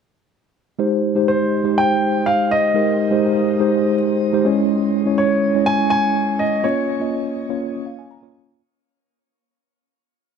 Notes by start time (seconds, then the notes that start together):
0.79 G#3 D#4 G4 C5
1.15 G#3 D#4 G4 C5
1.28 C5
1.64 G#3 D#4 G4 C5
1.78 G5
2.26 F5
2.51 D#5
2.74 G#3 D#4 G4 A#4
3.11 G#3 D#4 G4 C5
3.60 G#3 D#4 G4 C5
4.33 G#3 D#4 G4 C5
4.45 G#3 C#4 E4 C#5
5.05 G#3 C#4 E4 C#5
5.18 C#5
5.55 G#3 C#4 E4 C#5
5.66 G#5
5.90 G#5
6.39 D#5
6.64 A#3 C#4 F4 C#5
7.00 A#3 C#4 F4 D#5
7.49 A#3 C#4 F4 C#5
7.86 F5
7.99 G#5
8.11 A#5
8.22 A#3 C#4 F4 C#5